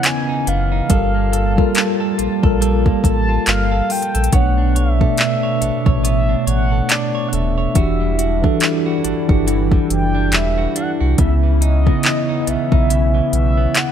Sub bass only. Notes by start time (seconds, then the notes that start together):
0.47 F#1
0.90 G1
2.19 A#1
2.44 A#1
3.04 A1
3.47 G1
4.15 A#1
4.33 B1
5.61 A1
5.86 A1
6.47 A1
7.33 D#1
7.76 E1
9.04 G1
9.29 G1
9.90 F#1
10.33 E1
11.01 C2
11.19 C#2
12.47 B1
12.72 B1
13.33 B1